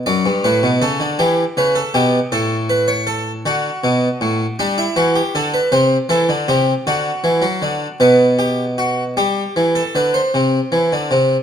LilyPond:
<<
  \new Staff \with { instrumentName = "Harpsichord" } { \time 6/8 \key g \major \tempo 4. = 53 d''8 b'8 a'8 g'8 b'16 a'16 g'8 | a'8 b'16 cis''16 a'8 fis'4. | d'16 e'16 fis'16 g'16 a'16 b'16 c''8 a'8 g'8 | fis'4. b'8 g'8 fis'8 |
g'8. a'16 b'16 c''4.~ c''16 | }
  \new Staff \with { instrumentName = "Harpsichord" } { \clef bass \time 6/8 \key g \major fis,16 g,16 a,16 b,16 cis16 d16 e8 cis8 b,8 | a,4. d8 b,8 a,8 | g8 e8 d8 c8 e16 d16 c8 | d8 e16 fis16 d8 b,4. |
g8 e8 d8 c8 e16 d16 c8 | }
>>